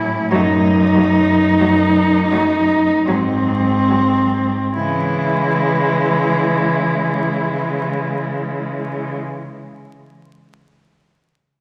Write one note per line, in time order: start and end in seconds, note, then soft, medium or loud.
0.00 0.18 A2 loud
0.00 0.31 E4 loud
0.31 1.45 F#2 loud
0.31 0.39 F#3 loud
0.31 0.42 A3 loud
0.31 3.07 D#4 loud
0.95 1.03 F#3 medium
0.95 1.04 A3 medium
1.59 2.88 F#2 loud
1.59 1.69 F#3 medium
1.59 1.67 A3 medium
2.31 2.39 F#3 medium
2.31 2.40 A3 medium
3.05 4.55 G#2 loud
3.05 3.15 F#3 medium
3.05 3.16 G#3 medium
3.05 4.75 C4 loud
3.89 3.97 F#3 medium
3.89 3.98 G#3 medium
4.75 9.16 C#3 medium
4.75 9.17 E3 medium
4.75 9.18 G#3 medium
4.75 9.17 E4 loud